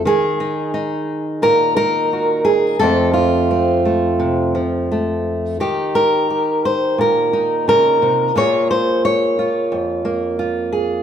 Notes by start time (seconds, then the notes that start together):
0.05 D#3 G#4
0.40 D#4
0.74 D#4
1.42 A#2 A#4
1.77 D#4 A#4
2.13 F#4
2.45 G#4
2.79 F2 F3 A3 C4 A4
3.14 F4
3.51 C4
3.85 A3
4.20 C3
4.55 F3
4.92 A3
5.60 D#3 D#4 G4
5.95 A#4
6.30 G4
6.65 C5
6.98 A#2 A#4
7.33 D#4
7.68 C#3 A#4
8.02 C3
8.36 A#2 A#3 F4 G#4 C#5
8.71 C5
9.05 C#5
9.39 F4
9.72 F2
10.05 A#3
10.39 F4
10.72 G#4